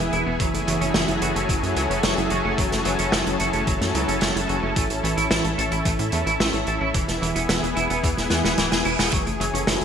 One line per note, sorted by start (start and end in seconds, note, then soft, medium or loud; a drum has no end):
0.00 0.11 E1 medium
0.00 0.38 B3 medium
0.00 4.72 E4 medium
0.00 0.10 G#4 medium
0.00 4.72 G#4 medium
0.13 0.25 E1 medium
0.13 0.24 E3 medium
0.13 0.20 E4 loud
0.13 closed hi-hat medium
0.26 0.38 E1 medium
0.26 0.33 B3 medium
0.40 0.52 F#1 loud
0.40 0.51 E3 medium
0.40 0.47 F#3 medium
0.40 4.72 F#3 medium
0.40 6.91 C#4 medium
0.40 6.91 A4 loud
0.40 kick loud
0.40 closed hi-hat medium
0.54 0.66 F#1 medium
0.54 0.65 A3 medium
0.54 closed hi-hat medium
0.67 0.79 F#1 medium
0.67 0.80 E3 loud
0.67 0.72 F#3 medium
0.67 closed hi-hat medium
0.81 0.93 F#1 medium
0.81 0.88 C#4 medium
0.81 closed hi-hat soft
0.94 1.06 F#1 loud
0.94 1.08 E3 loud
0.94 0.99 C#4 medium
0.94 snare loud
0.94 closed hi-hat medium
1.08 1.20 F#1 medium
1.08 1.19 E4 medium
1.08 closed hi-hat medium
1.22 1.34 F#1 loud
1.22 1.33 E3 medium
1.22 1.29 F#4 loud
1.22 closed hi-hat medium
1.35 1.47 F#1 medium
1.35 1.42 A3 medium
1.35 1.42 C#4 medium
1.35 closed hi-hat medium
1.49 1.61 F#1 loud
1.49 1.60 E3 medium
1.49 1.53 F#3 medium
1.49 kick loud
1.49 closed hi-hat loud
1.63 1.75 F#2 medium
1.63 1.74 A3 medium
1.63 closed hi-hat medium
1.76 1.88 C#2 medium
1.76 1.89 E3 loud
1.76 1.83 F#3 medium
1.76 closed hi-hat medium
1.90 2.02 F#1 medium
1.90 1.97 C#4 medium
1.90 closed hi-hat medium
2.03 2.16 F#1 loud
2.03 2.17 E3 loud
2.03 2.11 F#3 medium
2.03 snare loud
2.03 closed hi-hat loud
2.17 2.29 F#1 medium
2.17 2.29 E4 medium
2.17 closed hi-hat soft
2.30 2.43 F#1 medium
2.30 2.42 E3 medium
2.30 2.38 F#4 loud
2.30 closed hi-hat medium
2.45 2.56 F#1 medium
2.45 2.51 A3 medium
2.45 2.51 C#4 medium
2.58 2.70 F#1 loud
2.58 2.69 E3 medium
2.58 2.65 F#3 medium
2.58 kick loud
2.58 closed hi-hat medium
2.72 2.84 F#1 medium
2.72 2.83 A3 medium
2.72 snare soft
2.72 closed hi-hat medium
2.85 2.97 F#1 medium
2.85 2.98 E3 loud
2.85 2.90 F#3 medium
2.85 closed hi-hat medium
2.99 3.11 F#1 medium
2.99 3.06 C#4 medium
2.99 closed hi-hat medium
3.12 3.25 F#1 loud
3.12 3.26 E3 medium
3.12 3.17 C#4 medium
3.12 snare loud
3.12 closed hi-hat medium
3.26 3.38 F#1 medium
3.26 3.38 E4 medium
3.26 closed hi-hat medium
3.40 3.52 F#1 medium
3.40 3.51 E3 medium
3.40 3.47 F#4 loud
3.40 closed hi-hat medium
3.53 3.66 F#1 medium
3.53 3.60 A3 medium
3.53 3.60 C#4 medium
3.53 closed hi-hat medium
3.67 3.79 F#1 loud
3.67 3.79 E3 medium
3.67 3.71 F#3 loud
3.67 kick loud
3.67 closed hi-hat medium
3.81 3.93 F#2 medium
3.81 3.92 A3 medium
3.81 snare soft
3.81 closed hi-hat medium
3.95 4.06 C#2 medium
3.95 4.08 E3 loud
3.95 4.01 F#3 medium
3.95 closed hi-hat medium
4.08 4.20 F#1 medium
4.08 4.15 C#4 medium
4.08 closed hi-hat medium
4.21 4.34 F#1 loud
4.21 4.35 E3 loud
4.21 4.29 F#3 medium
4.21 snare loud
4.21 closed hi-hat medium
4.36 4.47 F#1 medium
4.36 4.47 E4 medium
4.36 closed hi-hat medium
4.49 4.61 F#1 medium
4.49 4.60 E3 medium
4.49 4.56 F#4 loud
4.49 closed hi-hat soft
4.63 4.75 F#1 medium
4.63 4.70 A3 medium
4.63 4.70 C#4 medium
4.76 4.88 A1 loud
4.76 4.88 E3 medium
4.76 4.83 A3 medium
4.76 9.09 E4 medium
4.76 kick loud
4.76 closed hi-hat loud
4.90 5.02 A1 medium
4.90 5.01 C#4 medium
4.90 closed hi-hat medium
5.04 5.15 A1 medium
5.04 5.17 E3 loud
5.04 5.08 A3 medium
5.04 closed hi-hat medium
5.17 5.29 A1 medium
5.17 5.24 E4 medium
5.17 closed hi-hat medium
5.31 5.43 A1 loud
5.31 5.44 E3 loud
5.31 5.35 E4 medium
5.31 snare loud
5.31 closed hi-hat loud
5.44 5.56 A1 medium
5.44 5.56 A4 medium
5.44 closed hi-hat medium
5.58 5.70 A1 medium
5.58 5.69 E3 medium
5.58 5.65 A4 loud
5.58 closed hi-hat medium
5.72 5.84 A1 medium
5.72 5.79 C#4 medium
5.72 5.79 E4 medium
5.72 closed hi-hat medium
5.85 5.97 A1 loud
5.85 5.97 E3 medium
5.85 5.90 A3 medium
5.85 kick loud
5.85 closed hi-hat medium
5.99 6.11 A2 medium
5.99 6.10 C#4 medium
5.99 closed hi-hat medium
6.12 6.25 E2 medium
6.12 6.26 E3 loud
6.12 6.20 A3 medium
6.12 closed hi-hat medium
6.26 6.38 A1 medium
6.26 6.33 E4 medium
6.26 closed hi-hat medium
6.40 6.52 A1 loud
6.40 6.53 E3 loud
6.40 6.47 A3 medium
6.40 snare loud
6.40 closed hi-hat loud
6.53 6.65 A1 medium
6.53 6.65 A4 medium
6.53 closed hi-hat medium
6.67 6.79 A1 loud
6.67 6.79 E3 medium
6.67 6.74 A4 loud
6.67 closed hi-hat soft
6.81 6.93 A1 medium
6.81 6.88 C#4 medium
6.81 6.88 E4 medium
6.94 7.06 E1 loud
6.94 7.01 E3 medium
6.94 7.06 E3 medium
6.94 9.11 B3 medium
6.94 9.85 G#4 loud
6.94 kick loud
6.94 closed hi-hat loud
7.08 7.20 E1 medium
7.08 7.19 B3 medium
7.08 snare soft
7.08 closed hi-hat medium
7.22 7.34 E1 medium
7.22 7.26 E3 medium
7.22 7.35 E3 loud
7.22 closed hi-hat medium
7.35 7.47 E1 medium
7.35 7.42 B3 medium
7.35 7.42 E4 medium
7.35 closed hi-hat medium
7.49 7.61 E1 loud
7.49 7.62 E3 loud
7.49 7.53 B3 medium
7.49 snare loud
7.49 closed hi-hat loud
7.63 7.75 E1 medium
7.63 7.74 G#4 medium
7.63 closed hi-hat medium
7.76 7.88 E1 medium
7.76 7.88 E3 medium
7.76 7.83 E4 loud
7.76 closed hi-hat medium
7.90 8.02 E1 medium
7.90 7.97 B3 medium
7.90 closed hi-hat medium
8.04 8.16 E2 loud
8.04 8.08 E3 loud
8.04 8.15 E3 medium
8.04 kick loud
8.04 closed hi-hat medium
8.04 reverse cymbal medium
8.17 8.29 E1 medium
8.17 8.29 B3 medium
8.17 snare soft
8.17 closed hi-hat medium
8.30 8.43 E2 medium
8.30 8.38 E3 medium
8.30 8.44 E3 loud
8.30 snare medium
8.30 closed hi-hat medium
8.45 8.56 E1 medium
8.45 8.51 B3 medium
8.45 8.51 E4 medium
8.45 snare medium
8.45 closed hi-hat medium
8.58 8.70 D1 loud
8.58 8.65 E3 medium
8.58 8.71 E3 loud
8.58 snare medium
8.58 closed hi-hat loud
8.72 8.84 E1 medium
8.72 8.83 G#4 medium
8.72 snare medium
8.72 closed hi-hat medium
8.85 8.97 E1 medium
8.85 8.97 E3 medium
8.85 8.92 E4 loud
8.85 closed hi-hat medium
8.99 9.11 E1 medium
8.99 9.06 B3 medium
8.99 snare medium
8.99 closed hi-hat medium
9.13 9.25 F#1 loud
9.13 9.24 E3 medium
9.13 9.20 F#3 medium
9.13 9.85 F#3 medium
9.13 9.85 C#4 medium
9.13 9.85 E4 medium
9.13 9.85 A4 medium
9.13 kick loud
9.13 closed hi-hat medium
9.26 9.38 F#1 medium
9.26 9.38 A3 medium
9.26 closed hi-hat medium
9.40 9.52 F#1 medium
9.40 9.53 E3 loud
9.40 9.44 F#3 medium
9.40 closed hi-hat medium
9.54 9.66 F#1 medium
9.54 9.60 C#4 medium
9.54 closed hi-hat medium
9.67 9.79 F#1 loud
9.67 9.80 E3 loud
9.67 9.71 C#4 medium
9.67 snare loud
9.67 closed hi-hat loud
9.81 9.85 F#1 medium
9.81 9.85 E4 medium
9.81 closed hi-hat medium